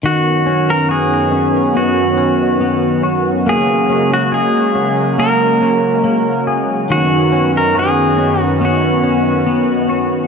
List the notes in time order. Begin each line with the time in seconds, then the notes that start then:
0.03 F#2 D#3 F#3 B3 C#4 F#4
0.46 C#4
0.70 A#4
0.89 F#4 G#4
1.32 C#4
1.75 B3 F#4
2.18 C#4
2.60 B3
3.03 F#4
3.46 C#3 G#3 A#3 G#4
3.89 C#4
4.13 F#4
4.32 G#4
4.75 C#4
5.18 A#3 A#4
5.61 C#4
6.04 A#3
6.47 G#4
6.90 F#2 D#3 B3 C#4 F#4
7.32 C#4
7.57 A#4
7.75 F#4
7.79 G#4
8.18 C#4
8.41 F#4
8.61 B3
8.65 F#4
9.03 C#4
9.46 B3
9.89 F#4